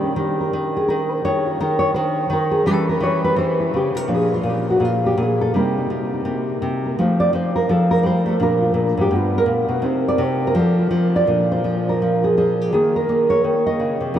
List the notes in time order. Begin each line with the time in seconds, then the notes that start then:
Already playing: D#3 G3 G4
0.03 C#4
0.16 D#3 C#4
0.40 A#4
0.53 D#3
0.77 G#4
0.88 D#3 A#4
1.11 C5
1.25 D#3 C#5
1.46 F4
1.60 D#3 A#4
1.79 C#5
1.94 D#3 C5
2.30 D#3 A#4
2.51 G#4
2.66 E3 G3 C#4 G4 A4
2.89 A#4
3.00 E3 C#5
3.24 B4
3.36 E3 C5
3.60 E4
3.74 C#3 G4
3.95 C3 A#4
4.08 A#2 F3 D4
4.14 G#4
4.34 F4
4.43 A#2
4.49 G4
4.70 F#4
4.80 A#2
4.85 F4
5.06 G4
5.17 A#2
5.22 G#4
5.41 A4
5.54 C3 G3 A#3 D#4 A#4
5.77 D#4
5.90 C3
6.14 D#4
6.25 C3 A#3
6.62 C3
6.86 A#4
6.99 F3 A3 D#4 F4 C5
7.20 D5
7.33 F3 C5
7.56 A#4
7.69 F3 A4
7.91 A#4
8.03 G3 C5
8.26 A3 A4
8.40 A#2 F3 D4 F4 A#4
8.62 F4
8.74 A#2
8.97 G#2 G4
9.11 G2 B3
9.16 F4
9.38 A#4
9.46 A#2
9.69 B2
9.82 C3 C4 D#4 G4 C5
10.08 D5
10.18 C3
10.24 C5
10.47 A#4
10.55 F3
10.59 A4
10.79 F4
10.91 F3 F4
11.16 D5
11.27 A#2 F3 D4 F4
11.52 C5
11.64 F3
11.89 A#4
12.02 F3
12.24 G#4
12.37 F3 G#4
12.61 G4
12.73 D#3 A#3 G#4
12.96 A#4
13.09 A#3
13.30 C#5
13.44 D#3
13.67 D#5
13.80 C#3
14.01 C3
14.14 A#2 F3 D4